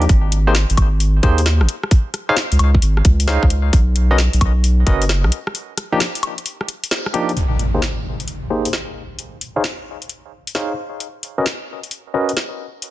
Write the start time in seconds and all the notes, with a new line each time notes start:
0.02 closed hi-hat
0.09 G#1, kick, closed hi-hat
0.32 closed hi-hat
0.47 A#3 D#4 G4 G#4 C5
0.55 snare, closed hi-hat
0.70 G#1, closed hi-hat
0.77 G#1, kick, closed hi-hat, high woodblock
1.00 closed hi-hat
1.23 D#2 A#3 D#4 G4 G#4 C5, kick, closed hi-hat
1.38 closed hi-hat
1.46 snare, closed hi-hat
1.61 G#1, cross-stick
1.69 closed hi-hat
1.83 cross-stick
1.91 kick, closed hi-hat
2.14 cross-stick, closed hi-hat
2.29 D#4 G#4 C5 C#5 F5
2.37 snare, closed hi-hat
2.52 C#2, closed hi-hat
2.59 C#2, closed hi-hat, high woodblock
2.75 kick
2.82 G#1, closed hi-hat
2.97 cross-stick
3.05 C#2, kick, closed hi-hat
3.20 closed hi-hat
3.28 D#4 G#4 C5 C#5 F5, snare, closed hi-hat
3.43 C#2, kick, cross-stick
3.50 closed hi-hat
3.73 B1, kick, closed hi-hat
3.96 closed hi-hat
4.11 C#4 F#4 A#4 B4 D#5
4.18 snare, closed hi-hat
4.33 B1, closed hi-hat
4.41 B1, kick, closed hi-hat, high woodblock
4.64 closed hi-hat
4.87 F#1 C#4 F#4 A#4 B4 D#5, kick, closed hi-hat
5.02 closed hi-hat
5.09 snare, closed hi-hat
5.24 B1, cross-stick
5.32 closed hi-hat
5.47 cross-stick
5.55 closed hi-hat
5.78 cross-stick, closed hi-hat
5.92 F3 A#3 D4 D#4 G4
6.00 snare, closed hi-hat
6.15 closed hi-hat
6.23 closed hi-hat, high woodblock
6.38 closed hi-hat
6.46 closed hi-hat
6.61 cross-stick
6.68 closed hi-hat
6.84 closed hi-hat
6.91 snare, closed hi-hat
7.06 cross-stick
7.14 F3 A#3 D4 D#4 G4, closed hi-hat
7.29 closed hi-hat
7.37 closed hi-hat, impact
7.59 closed hi-hat
7.74 A#3 D#4 G4 G#4 C5
7.82 snare, closed hi-hat
8.20 closed hi-hat
8.28 closed hi-hat
8.50 A#3 D#4 G4 G#4 C5
8.65 closed hi-hat
8.73 snare, closed hi-hat
9.19 closed hi-hat
9.41 closed hi-hat
9.56 D#4 G#4 C5 C#5 F5
9.64 snare, closed hi-hat
10.02 closed hi-hat
10.09 closed hi-hat
10.47 closed hi-hat
10.55 D#4 G#4 C5 C#5 F5, snare, closed hi-hat
11.00 closed hi-hat
11.23 closed hi-hat
11.38 C#4 F#4 A#4 B4 D#5
11.46 snare, closed hi-hat
11.83 closed hi-hat
11.91 closed hi-hat
12.14 C#4 F#4 A#4 B4 D#5
12.29 closed hi-hat
12.37 snare, closed hi-hat
12.82 closed hi-hat